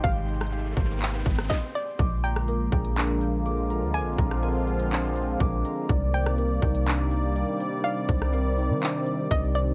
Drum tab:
HH |x---xxxxx---x---x---x-----------|x---x---x---x-x-x---x---x---x---|x---x---x---x-x-x---x---x---x---|x---x---x---x-x-x---x---x---x---|
CP |----------------x---------------|----------------x---------------|----------------x---------------|----------------x---------------|
SD |------r---------------r-o-------|------r-------------------------|------r-------------------------|------r-------------------------|
BD |o-----------o-------o---o-------|o-----------o-------------------|----o-------------------o-------|o-----------o-------------------|

HH |x---x---x---o---x---x---x---x---|
CP |----------------x---------------|
SD |------r-------------------------|
BD |----o-------------------o-------|